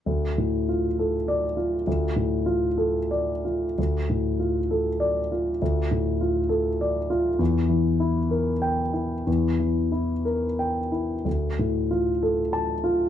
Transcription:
\new Staff \with { instrumentName = "Grand piano" } { \time 3/4 \key d \minor \tempo 4 = 96 << { r2 d''4 | r2. | r2 d''4 | r2. |
r2 g''4 | r2. | r2 a''4 | } \\ { d,8 a,8 f'8 a'4 f'8 | d,8 a,8 f'8 a'8 d''8 f'8 | d,8 a,8 f'8 a'4 f'8 | d,8 a,8 f'8 a'8 d''8 f'8 |
e,8 e8 e'8 bes'4 e'8 | e,8 e8 e'8 bes'8 g''8 e'8 | d,8 a,8 f'8 a'4 f'8 | } >> }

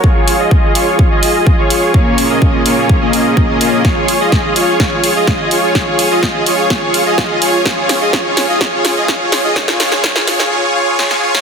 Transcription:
<<
  \new Staff \with { instrumentName = "Supersaw synth" } { \time 4/4 \key des \major \tempo 4 = 126 <f' aes' des''>8. <f' aes' ees''>8. <f' aes' des''>8. <f' aes' ees''>4 <f' aes' des''>8. | <bes des' f' aes' des''>8. <bes des' f' aes' ees''>8. <bes des' f' aes' des''>8. <bes des' f' aes' ees''>8. <bes des' f' aes' ees''>16 <bes des' f' aes' ees''>16 <bes des' f' aes' ees''>8 | <f' aes' des''>8. <f' aes' ees''>8. <f' aes' des''>8 <f' aes' des''>8. <f' aes' ees''>8. <f' aes' des''>8 | <f' aes' des''>8. <f' aes' ees''>8. <f' aes' des''>8 <f' aes' des''>8. <f' aes' ees''>8. <f' aes' des''>8 |
<f' aes' des''>8. <f' aes' ees''>16 <f' aes' des''>8. <f' aes' ees''>16 <f' aes' des''>8. <f' aes' ees''>16 <f' aes' des''>8. <f' aes' ees''>16 | <f' aes' des''>8 <f' aes' des''>8 <f' aes' des''>8 <f' aes' des''>8 <f' aes' des''>8 <f' aes' des''>8 <f' aes' des''>8 <f' aes' des''>8 | }
  \new DrumStaff \with { instrumentName = "Drums" } \drummode { \time 4/4 bd8 hho8 bd8 hho8 bd8 hho8 bd8 hho8 | bd8 hho8 bd8 hho8 bd8 hho8 bd8 hho8 | <bd sn>8 hho8 <bd sn>8 hho8 <bd sn>8 hho8 <bd sn>8 hho8 | <bd sn>8 hho8 <bd sn>8 hho8 <bd sn>8 hho8 <bd sn>8 hho8 |
<bd sn>8 <hho sn>8 <bd sn>8 <hho sn>8 <bd sn>8 <hho sn>8 <bd sn>8 <hho sn>8 | <bd sn>16 sn16 <hho sn>16 sn16 <bd sn>16 sn16 <hho sn>16 sn16 r4 sn16 sn8 sn16 | }
>>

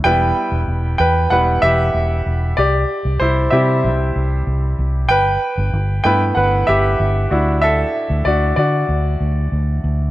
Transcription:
<<
  \new Staff \with { instrumentName = "Grand piano" } { \time 4/4 \key e \minor \tempo 4 = 95 << { <b' g''>4. <b' g''>8 <b' fis''>8 <g' e''>4. | <g' d''>4 <e' c''>8 <g' e''>4 r4. | <b' g''>4. <b' g''>8 <b' fis''>8 <g' e''>4. | <a' e''>4 <fis' d''>8 <fis' d''>4 r4. | } \\ { <g b e'>4. r8 <g b e'>8 r4. | r4. <g c' e'>2~ <g c' e'>8 | r4. <a b e'>2 <d' e' fis'>8~ | <d' e' fis'>4 r2. | } >> }
  \new Staff \with { instrumentName = "Fingered electric bass" } { \clef bass \time 4/4 \key e \minor e,,8 r16 e,,16 e,,8 e,8 e,,8 e,,8 e,,8 e,,8 | c,8 r16 c,16 c,8 c8 c,8 c,8 c,8 c,8 | g,,8 r16 g,,16 g,,8 g,8 g,,8 g,,8 g,,8 d,8~ | d,8 r16 d,16 d,8 d8 d,8 d,8 d,8 d,8 | }
>>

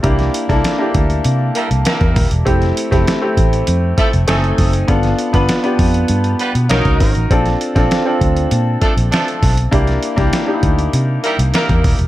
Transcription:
<<
  \new Staff \with { instrumentName = "Grand piano" } { \time 4/4 \key c \mixolydian \tempo 4 = 99 <bes d' e' g'>8. <bes d' e' a'>8 <bes d' e' g'>4.~ <bes d' e' g'>16 r4 | <a c' e' g'>8. <a c' e' g'>8 <a c' e' g'>4.~ <a c' e' g'>16 <a c' dis' aes''>4 | <b d' f' a'>8. <b d' f' b'>8 <b d' f' g'>4.~ <b d' f' g'>16 <cis' dis' fis' ais'>4 | <c' d' f' a'>8. <c' d' f' a'>8 <c' d' f' a'>4.~ <c' d' f' a'>16 r4 |
<bes d' e' g'>8. <bes d' e' g'>8 <bes d' ees' e' g'>4.~ <bes d' ees' e' g'>16 r4 | }
  \new Staff \with { instrumentName = "Horn section" } { \time 4/4 \key c \mixolydian r2 r8 <g bes e' bes'>16 r16 <g bes e' bes'>8. r16 | r2 r8 <f a e' a'>16 r16 <fis a dis' a'>8. r16 | r2 r8 <g b f' b'>16 r16 <fis ais dis' ais'>8. r16 | r2 r8 <f a d' a'>16 r16 <f a d' a'>8. r16 |
r2 r8 <g bes e' bes'>16 r16 <g bes e' bes'>8. r16 | }
  \new Staff \with { instrumentName = "Fingered electric bass" } { \clef bass \time 4/4 \key c \mixolydian c,8 r16 c,16 r8 d,8 c8 r16 c,16 r16 e,16 ees,,16 e,,16 | f,,8 r16 f,,16 r8 a,,8 f,8 r16 f,,16 fis,,8 fis,,8 | g,,8 r16 g,,16 r8 f,8 g,8 r16 b,16 b,,16 cis,16 aes,,16 a,,16 | bes,,8 r16 bes,,16 r8 d,8 bes,8 r16 bes,,16 r8 b,,8 |
c,8 r16 c,16 r8 d,8 c8 r16 c,16 r16 e,16 ees,,16 e,,16 | }
  \new DrumStaff \with { instrumentName = "Drums" } \drummode { \time 4/4 <hh bd>16 <hh sn>16 hh16 <hh bd sn>16 <hh sn>8 <hh bd>16 hh16 hh8 hh16 hh16 <hh sn>16 <hh bd>16 <hho bd sn>16 hh16 | <hh bd>16 <hh sn>16 hh16 <hh bd sn>16 <hh sn>8 <hh bd>16 hh16 hh8 <hh bd>16 hh16 <hh sn>16 hh16 <hho bd sn>16 hh16 | <hh bd>16 <hh sn>16 hh16 <hh bd sn>16 <hh sn>16 hh16 <hho bd>16 hh16 hh16 hh16 hh16 hh16 <hh sn>16 <hh bd>16 <hho bd sn>16 hh16 | <hh bd>16 <hh sn>16 hh16 <hh bd sn>16 <hh sn>8 <hh bd>16 hh16 hh8 <hh bd>16 hh16 <hh sn>16 hh16 <hho bd sn>16 hh16 |
<hh bd>16 <hh sn>16 hh16 <hh bd sn>16 <hh sn>8 <hh bd>16 hh16 hh8 hh16 hh16 <hh sn>16 <hh bd>16 <hho bd sn>16 hh16 | }
>>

